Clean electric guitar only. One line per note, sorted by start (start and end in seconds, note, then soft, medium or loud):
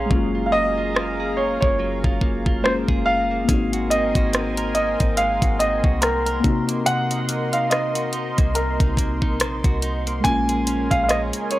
0.00 0.52 A#3 medium
0.00 0.34 C#4 medium
0.00 0.56 G#4 medium
0.00 0.20 C5 medium
0.11 1.79 F#3 medium
0.35 0.76 F4 medium
0.53 0.95 A#3 medium
0.78 1.36 F4 medium
0.95 1.62 A#3 medium
1.20 2.88 G#4 medium
1.38 2.03 F4 medium
1.62 2.22 A#3 medium
1.79 3.94 F#3 medium
2.04 2.45 F4 medium
2.22 2.64 A#3 medium
2.46 3.05 F4 medium
2.64 3.31 A#3 medium
2.89 3.73 G#4 medium
3.06 3.59 F4 medium
3.31 3.48 A#3 medium
3.49 5.17 G#3 medium
3.73 4.15 F#4 medium
3.91 4.33 C4 medium
4.15 4.75 F#4 medium
4.33 4.99 C4 medium
4.58 6.26 A#4 medium
4.75 5.42 F#4 medium
5.00 5.59 C4 medium
5.18 6.54 G#3 medium
5.42 5.84 F#4 medium
5.60 6.01 C4 medium
5.84 6.89 F#4 medium
6.02 6.72 C4 medium
6.26 6.89 A#4 medium
6.44 6.85 C3 medium
6.69 7.28 A#3 medium
6.86 8.54 C3 medium
7.11 7.52 D#4 medium
7.29 7.71 A#3 medium
7.53 8.12 D#4 medium
7.71 8.37 A#3 medium
7.96 9.64 F#4 medium
8.13 8.79 D#4 medium
8.38 8.98 A#3 medium
8.56 10.34 C3 medium
8.80 9.21 D#4 medium
8.98 9.40 A#3 medium
9.22 9.81 D#4 medium
9.40 10.07 A#3 medium
9.65 10.35 F#4 medium
9.83 10.35 D#4 medium
10.07 10.25 A#3 medium
10.25 11.59 A#3 medium
10.49 10.91 G#4 medium
10.67 11.09 C#4 medium
10.92 11.51 G#4 medium
11.09 11.59 C#4 medium
11.52 11.59 G#4 medium